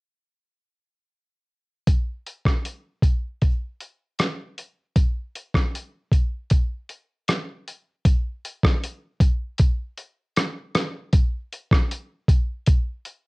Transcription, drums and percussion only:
1.87 kick medium
1.87 closed hi-hat medium
2.27 closed hi-hat soft
2.45 kick medium
2.45 cross-stick medium
2.65 closed hi-hat medium
3.02 kick medium
3.02 closed hi-hat soft
3.42 kick medium
3.42 closed hi-hat medium
3.81 closed hi-hat soft
4.19 cross-stick medium
4.19 closed hi-hat medium
4.58 closed hi-hat soft
4.96 kick loud
4.96 closed hi-hat medium
5.35 closed hi-hat soft
5.54 kick medium
5.54 cross-stick medium
5.75 closed hi-hat medium
6.12 kick medium
6.12 closed hi-hat soft
6.50 kick medium
6.50 closed hi-hat medium
6.89 closed hi-hat soft
7.28 cross-stick medium
7.28 closed hi-hat medium
7.68 closed hi-hat soft
8.05 kick loud
8.05 closed hi-hat medium
8.45 closed hi-hat soft
8.63 kick medium
8.63 cross-stick medium
8.83 closed hi-hat medium
9.20 kick medium
9.20 closed hi-hat medium
9.58 kick medium
9.58 closed hi-hat medium
9.98 closed hi-hat soft
10.37 cross-stick medium
10.37 closed hi-hat medium
10.75 cross-stick medium
10.75 closed hi-hat soft
11.13 kick loud
11.13 closed hi-hat medium
11.53 closed hi-hat soft
11.71 kick medium
11.71 cross-stick medium
11.91 closed hi-hat medium
12.28 kick medium
12.28 closed hi-hat medium
12.66 kick medium
12.66 closed hi-hat medium
13.05 closed hi-hat soft

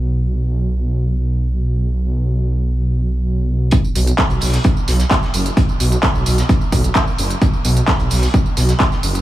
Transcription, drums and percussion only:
3.71 kick loud
3.71 closed hi-hat medium
3.71 tambourine soft
3.84 tambourine soft
3.95 closed hi-hat medium
3.95 open hi-hat loud
3.95 tambourine medium
4.07 closed hi-hat medium
4.07 tambourine soft
4.18 kick loud
4.18 snare loud
4.18 clap loud
4.18 closed hi-hat medium
4.18 tambourine soft
4.30 closed hi-hat soft
4.30 tambourine soft
4.41 open hi-hat medium
4.41 open hi-hat loud
4.41 tambourine medium
4.53 snare soft
4.53 closed hi-hat medium
4.53 tambourine soft
4.64 kick loud
4.64 closed hi-hat medium
4.64 tambourine soft
4.77 tambourine soft
4.88 snare soft
4.88 closed hi-hat medium
4.88 open hi-hat loud
4.88 tambourine medium
4.99 snare soft
4.99 closed hi-hat medium
4.99 tambourine soft
5.11 kick loud
5.11 snare loud
5.11 clap loud
5.11 closed hi-hat medium
5.11 tambourine soft
5.23 snare soft
5.23 tambourine soft
5.34 closed hi-hat medium
5.34 open hi-hat loud
5.34 tambourine medium
5.46 closed hi-hat medium
5.46 tambourine soft
5.57 kick loud
5.57 closed hi-hat medium
5.57 tambourine soft
5.69 tambourine soft
5.80 closed hi-hat medium
5.80 open hi-hat loud
5.80 tambourine medium
5.92 closed hi-hat medium
5.92 tambourine soft
6.02 kick loud
6.02 snare loud
6.02 clap loud
6.02 closed hi-hat medium
6.02 tambourine soft
6.15 tambourine soft
6.26 closed hi-hat medium
6.26 open hi-hat loud
6.26 tambourine medium
6.38 snare soft
6.38 closed hi-hat medium
6.38 tambourine soft
6.49 kick loud
6.49 closed hi-hat medium
6.49 tambourine soft
6.61 tambourine soft
6.72 kick medium
6.72 closed hi-hat medium
6.72 open hi-hat loud
6.72 tambourine medium
6.84 closed hi-hat medium
6.84 tambourine soft
6.95 kick loud
6.95 snare loud
6.95 clap loud
6.95 closed hi-hat medium
6.95 tambourine soft
7.07 tambourine soft
7.18 closed hi-hat medium
7.18 open hi-hat loud
7.18 tambourine medium
7.30 closed hi-hat medium
7.30 tambourine soft
7.42 kick loud
7.42 closed hi-hat medium
7.42 tambourine soft
7.54 tambourine soft
7.65 closed hi-hat medium
7.65 open hi-hat loud
7.65 tambourine medium
7.77 closed hi-hat medium
7.77 tambourine soft
7.88 kick loud
7.88 snare loud
7.88 clap loud
7.88 closed hi-hat medium
7.88 tambourine soft
8.00 closed hi-hat soft
8.00 tambourine soft
8.10 open hi-hat medium
8.10 open hi-hat loud
8.10 tambourine medium
8.22 snare soft
8.22 closed hi-hat medium
8.22 tambourine soft
8.34 kick loud
8.34 closed hi-hat medium
8.34 tambourine soft
8.46 tambourine soft
8.57 snare soft
8.57 closed hi-hat medium
8.57 open hi-hat loud
8.57 tambourine medium
8.69 snare soft
8.69 closed hi-hat medium
8.69 tambourine soft
8.79 kick loud
8.79 snare loud
8.79 clap loud
8.79 closed hi-hat medium
8.79 tambourine soft
8.92 snare soft
8.92 tambourine soft
9.03 closed hi-hat medium
9.03 open hi-hat loud
9.03 tambourine medium
9.15 closed hi-hat medium
9.15 tambourine soft

